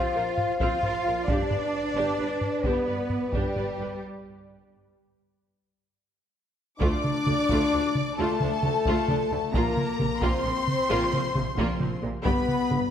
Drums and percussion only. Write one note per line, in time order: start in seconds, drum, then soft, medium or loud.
0.37 taiko low-mid medium
0.60 taiko medium
0.83 taiko low-mid soft
1.28 taiko medium
1.51 taiko low-mid soft
2.41 taiko low-mid medium
2.64 taiko medium
3.10 taiko low-mid medium
3.33 taiko medium
3.56 taiko low-mid soft
6.81 taiko loud
7.04 taiko mid medium
7.27 taiko mid medium
7.49 taiko medium
7.95 taiko mid medium
8.40 taiko mid medium
8.63 taiko mid medium
8.85 taiko medium
9.08 taiko mid medium
9.54 taiko loud
9.77 taiko mid medium
9.99 taiko mid medium
10.22 taiko medium
10.68 taiko mid medium
11.13 taiko mid medium
11.35 taiko mid medium
11.58 taiko medium
11.80 taiko mid medium
12.25 taiko loud
12.48 taiko mid medium
12.71 taiko mid medium